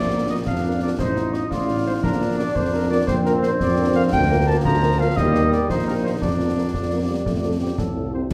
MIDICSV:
0, 0, Header, 1, 7, 480
1, 0, Start_track
1, 0, Key_signature, -2, "major"
1, 0, Tempo, 348432
1, 1364, Time_signature, 6, 3, 24, 8
1, 11478, End_track
2, 0, Start_track
2, 0, Title_t, "Cornet"
2, 0, Program_c, 0, 56
2, 0, Note_on_c, 0, 74, 82
2, 367, Note_off_c, 0, 74, 0
2, 402, Note_on_c, 0, 75, 80
2, 510, Note_off_c, 0, 75, 0
2, 634, Note_on_c, 0, 77, 79
2, 1085, Note_off_c, 0, 77, 0
2, 1119, Note_on_c, 0, 74, 84
2, 1228, Note_off_c, 0, 74, 0
2, 1367, Note_on_c, 0, 72, 82
2, 1846, Note_on_c, 0, 75, 77
2, 1867, Note_off_c, 0, 72, 0
2, 2081, Note_on_c, 0, 74, 72
2, 2102, Note_off_c, 0, 75, 0
2, 2554, Note_off_c, 0, 74, 0
2, 2562, Note_on_c, 0, 72, 83
2, 2671, Note_off_c, 0, 72, 0
2, 2798, Note_on_c, 0, 70, 82
2, 3247, Note_off_c, 0, 70, 0
2, 3277, Note_on_c, 0, 74, 81
2, 3519, Note_on_c, 0, 72, 84
2, 3540, Note_off_c, 0, 74, 0
2, 3765, Note_on_c, 0, 70, 81
2, 3786, Note_off_c, 0, 72, 0
2, 3994, Note_off_c, 0, 70, 0
2, 4002, Note_on_c, 0, 74, 96
2, 4221, Note_off_c, 0, 74, 0
2, 4229, Note_on_c, 0, 72, 103
2, 4341, Note_off_c, 0, 72, 0
2, 4476, Note_on_c, 0, 70, 88
2, 4586, Note_off_c, 0, 70, 0
2, 4714, Note_on_c, 0, 72, 92
2, 4824, Note_off_c, 0, 72, 0
2, 4960, Note_on_c, 0, 74, 83
2, 5409, Note_off_c, 0, 74, 0
2, 5444, Note_on_c, 0, 77, 105
2, 5552, Note_off_c, 0, 77, 0
2, 5678, Note_on_c, 0, 79, 112
2, 6127, Note_off_c, 0, 79, 0
2, 6160, Note_on_c, 0, 81, 100
2, 6269, Note_off_c, 0, 81, 0
2, 6409, Note_on_c, 0, 82, 103
2, 6880, Note_on_c, 0, 77, 109
2, 6901, Note_off_c, 0, 82, 0
2, 7115, Note_on_c, 0, 75, 110
2, 7136, Note_off_c, 0, 77, 0
2, 7600, Note_on_c, 0, 74, 95
2, 7620, Note_off_c, 0, 75, 0
2, 7836, Note_off_c, 0, 74, 0
2, 7844, Note_on_c, 0, 72, 88
2, 8068, Note_off_c, 0, 72, 0
2, 8083, Note_on_c, 0, 70, 84
2, 8192, Note_off_c, 0, 70, 0
2, 8320, Note_on_c, 0, 72, 84
2, 8429, Note_off_c, 0, 72, 0
2, 8562, Note_on_c, 0, 74, 84
2, 10427, Note_off_c, 0, 74, 0
2, 10481, Note_on_c, 0, 67, 60
2, 10730, Note_on_c, 0, 69, 54
2, 10750, Note_off_c, 0, 67, 0
2, 11202, Note_off_c, 0, 69, 0
2, 11210, Note_on_c, 0, 72, 71
2, 11317, Note_off_c, 0, 72, 0
2, 11478, End_track
3, 0, Start_track
3, 0, Title_t, "French horn section"
3, 0, Program_c, 1, 60
3, 171, Note_on_c, 1, 65, 53
3, 171, Note_on_c, 1, 70, 53
3, 177, Note_on_c, 1, 62, 54
3, 256, Note_off_c, 1, 65, 0
3, 256, Note_off_c, 1, 70, 0
3, 261, Note_off_c, 1, 62, 0
3, 408, Note_on_c, 1, 70, 49
3, 409, Note_on_c, 1, 62, 51
3, 409, Note_on_c, 1, 65, 52
3, 494, Note_off_c, 1, 62, 0
3, 494, Note_off_c, 1, 70, 0
3, 495, Note_off_c, 1, 65, 0
3, 887, Note_on_c, 1, 62, 51
3, 887, Note_on_c, 1, 70, 51
3, 890, Note_on_c, 1, 65, 51
3, 973, Note_off_c, 1, 62, 0
3, 973, Note_off_c, 1, 70, 0
3, 975, Note_off_c, 1, 65, 0
3, 1120, Note_on_c, 1, 62, 49
3, 1120, Note_on_c, 1, 70, 50
3, 1122, Note_on_c, 1, 65, 50
3, 1207, Note_off_c, 1, 62, 0
3, 1207, Note_off_c, 1, 70, 0
3, 1209, Note_off_c, 1, 65, 0
3, 1603, Note_on_c, 1, 65, 53
3, 1604, Note_off_c, 1, 65, 0
3, 1604, Note_on_c, 1, 65, 52
3, 1605, Note_on_c, 1, 63, 55
3, 1691, Note_off_c, 1, 65, 0
3, 1692, Note_off_c, 1, 63, 0
3, 1841, Note_on_c, 1, 65, 52
3, 1843, Note_off_c, 1, 65, 0
3, 1843, Note_on_c, 1, 63, 55
3, 1843, Note_on_c, 1, 65, 53
3, 1929, Note_off_c, 1, 63, 0
3, 1930, Note_off_c, 1, 65, 0
3, 2318, Note_on_c, 1, 63, 53
3, 2318, Note_on_c, 1, 65, 54
3, 2324, Note_off_c, 1, 65, 0
3, 2324, Note_on_c, 1, 65, 50
3, 2406, Note_off_c, 1, 63, 0
3, 2411, Note_off_c, 1, 65, 0
3, 2561, Note_on_c, 1, 65, 51
3, 2563, Note_on_c, 1, 63, 55
3, 2567, Note_off_c, 1, 65, 0
3, 2567, Note_on_c, 1, 65, 53
3, 2650, Note_off_c, 1, 63, 0
3, 2653, Note_off_c, 1, 65, 0
3, 3036, Note_on_c, 1, 62, 54
3, 3039, Note_on_c, 1, 70, 56
3, 3042, Note_on_c, 1, 65, 57
3, 3125, Note_off_c, 1, 62, 0
3, 3126, Note_off_c, 1, 70, 0
3, 3129, Note_off_c, 1, 65, 0
3, 3270, Note_on_c, 1, 65, 54
3, 3273, Note_on_c, 1, 70, 56
3, 3274, Note_on_c, 1, 62, 60
3, 3360, Note_off_c, 1, 65, 0
3, 3362, Note_off_c, 1, 70, 0
3, 3363, Note_off_c, 1, 62, 0
3, 3756, Note_on_c, 1, 62, 58
3, 3756, Note_on_c, 1, 65, 57
3, 3756, Note_on_c, 1, 70, 58
3, 3844, Note_off_c, 1, 62, 0
3, 3844, Note_off_c, 1, 65, 0
3, 3844, Note_off_c, 1, 70, 0
3, 4005, Note_on_c, 1, 65, 59
3, 4005, Note_on_c, 1, 70, 60
3, 4008, Note_on_c, 1, 62, 58
3, 4091, Note_off_c, 1, 65, 0
3, 4091, Note_off_c, 1, 70, 0
3, 4094, Note_off_c, 1, 62, 0
3, 4481, Note_on_c, 1, 62, 61
3, 4484, Note_on_c, 1, 65, 65
3, 4484, Note_on_c, 1, 70, 63
3, 4568, Note_off_c, 1, 62, 0
3, 4570, Note_off_c, 1, 65, 0
3, 4571, Note_off_c, 1, 70, 0
3, 4722, Note_on_c, 1, 62, 63
3, 4724, Note_on_c, 1, 65, 62
3, 4725, Note_on_c, 1, 70, 64
3, 4809, Note_off_c, 1, 62, 0
3, 4811, Note_off_c, 1, 65, 0
3, 4811, Note_off_c, 1, 70, 0
3, 5200, Note_on_c, 1, 62, 68
3, 5204, Note_on_c, 1, 65, 63
3, 5207, Note_on_c, 1, 70, 65
3, 5288, Note_off_c, 1, 62, 0
3, 5291, Note_off_c, 1, 65, 0
3, 5293, Note_off_c, 1, 70, 0
3, 5450, Note_on_c, 1, 62, 64
3, 5451, Note_on_c, 1, 65, 69
3, 5451, Note_on_c, 1, 70, 67
3, 5535, Note_off_c, 1, 62, 0
3, 5536, Note_off_c, 1, 65, 0
3, 5536, Note_off_c, 1, 70, 0
3, 5925, Note_on_c, 1, 70, 67
3, 5928, Note_on_c, 1, 58, 72
3, 5928, Note_on_c, 1, 65, 70
3, 6011, Note_off_c, 1, 70, 0
3, 6014, Note_off_c, 1, 58, 0
3, 6014, Note_off_c, 1, 65, 0
3, 6167, Note_on_c, 1, 65, 69
3, 6168, Note_on_c, 1, 58, 65
3, 6169, Note_on_c, 1, 70, 67
3, 6253, Note_off_c, 1, 65, 0
3, 6254, Note_off_c, 1, 58, 0
3, 6254, Note_off_c, 1, 70, 0
3, 6643, Note_on_c, 1, 58, 70
3, 6645, Note_on_c, 1, 70, 63
3, 6647, Note_on_c, 1, 65, 68
3, 6730, Note_off_c, 1, 58, 0
3, 6731, Note_off_c, 1, 70, 0
3, 6733, Note_off_c, 1, 65, 0
3, 6887, Note_on_c, 1, 58, 67
3, 6887, Note_on_c, 1, 70, 64
3, 6891, Note_on_c, 1, 65, 69
3, 6973, Note_off_c, 1, 58, 0
3, 6973, Note_off_c, 1, 70, 0
3, 6976, Note_off_c, 1, 65, 0
3, 7363, Note_on_c, 1, 67, 68
3, 7368, Note_on_c, 1, 58, 67
3, 7368, Note_on_c, 1, 70, 67
3, 7450, Note_off_c, 1, 67, 0
3, 7453, Note_off_c, 1, 58, 0
3, 7454, Note_off_c, 1, 70, 0
3, 7601, Note_on_c, 1, 58, 61
3, 7603, Note_on_c, 1, 70, 64
3, 7604, Note_on_c, 1, 67, 61
3, 7689, Note_off_c, 1, 58, 0
3, 7689, Note_off_c, 1, 70, 0
3, 7691, Note_off_c, 1, 67, 0
3, 8094, Note_on_c, 1, 67, 56
3, 8096, Note_on_c, 1, 70, 56
3, 8098, Note_on_c, 1, 58, 62
3, 8178, Note_off_c, 1, 67, 0
3, 8180, Note_off_c, 1, 70, 0
3, 8181, Note_off_c, 1, 58, 0
3, 8326, Note_on_c, 1, 70, 52
3, 8328, Note_on_c, 1, 58, 57
3, 8330, Note_on_c, 1, 67, 54
3, 8412, Note_off_c, 1, 70, 0
3, 8413, Note_off_c, 1, 58, 0
3, 8415, Note_off_c, 1, 67, 0
3, 8808, Note_on_c, 1, 70, 52
3, 8810, Note_on_c, 1, 58, 53
3, 8810, Note_on_c, 1, 65, 51
3, 8894, Note_off_c, 1, 70, 0
3, 8895, Note_off_c, 1, 58, 0
3, 8895, Note_off_c, 1, 65, 0
3, 9045, Note_on_c, 1, 58, 51
3, 9048, Note_on_c, 1, 65, 48
3, 9048, Note_on_c, 1, 70, 50
3, 9131, Note_off_c, 1, 58, 0
3, 9133, Note_off_c, 1, 65, 0
3, 9134, Note_off_c, 1, 70, 0
3, 9520, Note_on_c, 1, 58, 50
3, 9520, Note_on_c, 1, 65, 49
3, 9524, Note_on_c, 1, 70, 46
3, 9607, Note_off_c, 1, 65, 0
3, 9608, Note_off_c, 1, 58, 0
3, 9610, Note_off_c, 1, 70, 0
3, 9768, Note_on_c, 1, 58, 51
3, 9770, Note_on_c, 1, 65, 46
3, 9770, Note_on_c, 1, 70, 45
3, 9854, Note_off_c, 1, 58, 0
3, 9855, Note_off_c, 1, 65, 0
3, 9855, Note_off_c, 1, 70, 0
3, 10245, Note_on_c, 1, 65, 49
3, 10249, Note_on_c, 1, 69, 48
3, 10250, Note_on_c, 1, 60, 44
3, 10331, Note_off_c, 1, 65, 0
3, 10334, Note_off_c, 1, 69, 0
3, 10335, Note_off_c, 1, 60, 0
3, 10479, Note_on_c, 1, 60, 48
3, 10482, Note_on_c, 1, 65, 45
3, 10484, Note_on_c, 1, 69, 43
3, 10567, Note_off_c, 1, 60, 0
3, 10569, Note_off_c, 1, 65, 0
3, 10570, Note_off_c, 1, 69, 0
3, 10961, Note_on_c, 1, 60, 45
3, 10963, Note_on_c, 1, 65, 43
3, 10965, Note_on_c, 1, 69, 45
3, 11048, Note_off_c, 1, 60, 0
3, 11049, Note_off_c, 1, 65, 0
3, 11051, Note_off_c, 1, 69, 0
3, 11201, Note_on_c, 1, 69, 44
3, 11204, Note_on_c, 1, 60, 46
3, 11205, Note_on_c, 1, 65, 47
3, 11288, Note_off_c, 1, 69, 0
3, 11290, Note_off_c, 1, 60, 0
3, 11291, Note_off_c, 1, 65, 0
3, 11478, End_track
4, 0, Start_track
4, 0, Title_t, "Trombone section"
4, 0, Program_c, 2, 61
4, 631, Note_on_c, 2, 62, 66
4, 1307, Note_off_c, 2, 62, 0
4, 1353, Note_on_c, 2, 63, 70
4, 2028, Note_off_c, 2, 63, 0
4, 2073, Note_on_c, 2, 65, 73
4, 2748, Note_off_c, 2, 65, 0
4, 2804, Note_on_c, 2, 62, 75
4, 4189, Note_off_c, 2, 62, 0
4, 4247, Note_on_c, 2, 60, 83
4, 5631, Note_off_c, 2, 60, 0
4, 5681, Note_on_c, 2, 58, 86
4, 6381, Note_on_c, 2, 53, 79
4, 6403, Note_off_c, 2, 58, 0
4, 7062, Note_off_c, 2, 53, 0
4, 7112, Note_on_c, 2, 55, 75
4, 7788, Note_off_c, 2, 55, 0
4, 7835, Note_on_c, 2, 63, 79
4, 8542, Note_on_c, 2, 62, 68
4, 8560, Note_off_c, 2, 63, 0
4, 11017, Note_off_c, 2, 62, 0
4, 11478, End_track
5, 0, Start_track
5, 0, Title_t, "Euphonium"
5, 0, Program_c, 3, 58
5, 9282, Note_on_c, 3, 53, 57
5, 9729, Note_off_c, 3, 53, 0
5, 9760, Note_on_c, 3, 55, 61
5, 9985, Note_off_c, 3, 55, 0
5, 10000, Note_on_c, 3, 57, 65
5, 10448, Note_off_c, 3, 57, 0
5, 10476, Note_on_c, 3, 43, 58
5, 10586, Note_off_c, 3, 43, 0
5, 10713, Note_on_c, 3, 45, 51
5, 11164, Note_off_c, 3, 45, 0
5, 11203, Note_on_c, 3, 48, 62
5, 11426, Note_off_c, 3, 48, 0
5, 11435, Note_on_c, 3, 50, 78
5, 11478, Note_off_c, 3, 50, 0
5, 11478, End_track
6, 0, Start_track
6, 0, Title_t, "Tuba"
6, 0, Program_c, 4, 58
6, 0, Note_on_c, 4, 34, 71
6, 523, Note_off_c, 4, 34, 0
6, 645, Note_on_c, 4, 41, 62
6, 1244, Note_off_c, 4, 41, 0
6, 1361, Note_on_c, 4, 33, 69
6, 1962, Note_off_c, 4, 33, 0
6, 2076, Note_on_c, 4, 33, 64
6, 2680, Note_off_c, 4, 33, 0
6, 2798, Note_on_c, 4, 34, 73
6, 3346, Note_off_c, 4, 34, 0
6, 3527, Note_on_c, 4, 41, 66
6, 4125, Note_off_c, 4, 41, 0
6, 4240, Note_on_c, 4, 34, 81
6, 4842, Note_off_c, 4, 34, 0
6, 4967, Note_on_c, 4, 41, 77
6, 5566, Note_off_c, 4, 41, 0
6, 5676, Note_on_c, 4, 38, 92
6, 6280, Note_off_c, 4, 38, 0
6, 6405, Note_on_c, 4, 38, 77
6, 7005, Note_off_c, 4, 38, 0
6, 7117, Note_on_c, 4, 39, 92
6, 7720, Note_off_c, 4, 39, 0
6, 7846, Note_on_c, 4, 34, 75
6, 8445, Note_off_c, 4, 34, 0
6, 8565, Note_on_c, 4, 41, 70
6, 9164, Note_off_c, 4, 41, 0
6, 9285, Note_on_c, 4, 41, 61
6, 9884, Note_off_c, 4, 41, 0
6, 10007, Note_on_c, 4, 41, 62
6, 10605, Note_off_c, 4, 41, 0
6, 10725, Note_on_c, 4, 36, 53
6, 11324, Note_off_c, 4, 36, 0
6, 11478, End_track
7, 0, Start_track
7, 0, Title_t, "Drums"
7, 640, Note_on_c, 9, 35, 66
7, 640, Note_on_c, 9, 38, 55
7, 778, Note_off_c, 9, 35, 0
7, 778, Note_off_c, 9, 38, 0
7, 1360, Note_on_c, 9, 35, 79
7, 1360, Note_on_c, 9, 38, 72
7, 1497, Note_off_c, 9, 35, 0
7, 1497, Note_off_c, 9, 38, 0
7, 1597, Note_on_c, 9, 38, 49
7, 1735, Note_off_c, 9, 38, 0
7, 1840, Note_on_c, 9, 38, 48
7, 1978, Note_off_c, 9, 38, 0
7, 2080, Note_on_c, 9, 35, 66
7, 2080, Note_on_c, 9, 38, 57
7, 2218, Note_off_c, 9, 35, 0
7, 2218, Note_off_c, 9, 38, 0
7, 2802, Note_on_c, 9, 35, 78
7, 2802, Note_on_c, 9, 38, 60
7, 2940, Note_off_c, 9, 35, 0
7, 2940, Note_off_c, 9, 38, 0
7, 3520, Note_on_c, 9, 35, 74
7, 3520, Note_on_c, 9, 38, 60
7, 3658, Note_off_c, 9, 35, 0
7, 3658, Note_off_c, 9, 38, 0
7, 4240, Note_on_c, 9, 35, 78
7, 4240, Note_on_c, 9, 38, 71
7, 4378, Note_off_c, 9, 35, 0
7, 4378, Note_off_c, 9, 38, 0
7, 4484, Note_on_c, 9, 38, 48
7, 4622, Note_off_c, 9, 38, 0
7, 4724, Note_on_c, 9, 38, 55
7, 4862, Note_off_c, 9, 38, 0
7, 4961, Note_on_c, 9, 35, 75
7, 4961, Note_on_c, 9, 38, 59
7, 5099, Note_off_c, 9, 35, 0
7, 5099, Note_off_c, 9, 38, 0
7, 5685, Note_on_c, 9, 35, 83
7, 5685, Note_on_c, 9, 38, 60
7, 5685, Note_on_c, 9, 49, 31
7, 5823, Note_off_c, 9, 35, 0
7, 5823, Note_off_c, 9, 38, 0
7, 5823, Note_off_c, 9, 49, 0
7, 6405, Note_on_c, 9, 35, 76
7, 6405, Note_on_c, 9, 38, 62
7, 6543, Note_off_c, 9, 35, 0
7, 6543, Note_off_c, 9, 38, 0
7, 7126, Note_on_c, 9, 35, 76
7, 7126, Note_on_c, 9, 38, 76
7, 7263, Note_off_c, 9, 35, 0
7, 7263, Note_off_c, 9, 38, 0
7, 7364, Note_on_c, 9, 38, 52
7, 7501, Note_off_c, 9, 38, 0
7, 7606, Note_on_c, 9, 38, 50
7, 7744, Note_off_c, 9, 38, 0
7, 7844, Note_on_c, 9, 35, 71
7, 7844, Note_on_c, 9, 38, 55
7, 7982, Note_off_c, 9, 35, 0
7, 7982, Note_off_c, 9, 38, 0
7, 8566, Note_on_c, 9, 35, 78
7, 8566, Note_on_c, 9, 38, 63
7, 8704, Note_off_c, 9, 35, 0
7, 8704, Note_off_c, 9, 38, 0
7, 9285, Note_on_c, 9, 35, 66
7, 9285, Note_on_c, 9, 38, 58
7, 9423, Note_off_c, 9, 35, 0
7, 9423, Note_off_c, 9, 38, 0
7, 10004, Note_on_c, 9, 35, 75
7, 10004, Note_on_c, 9, 38, 57
7, 10141, Note_off_c, 9, 35, 0
7, 10141, Note_off_c, 9, 38, 0
7, 10722, Note_on_c, 9, 35, 68
7, 10722, Note_on_c, 9, 38, 62
7, 10860, Note_off_c, 9, 35, 0
7, 10860, Note_off_c, 9, 38, 0
7, 11478, End_track
0, 0, End_of_file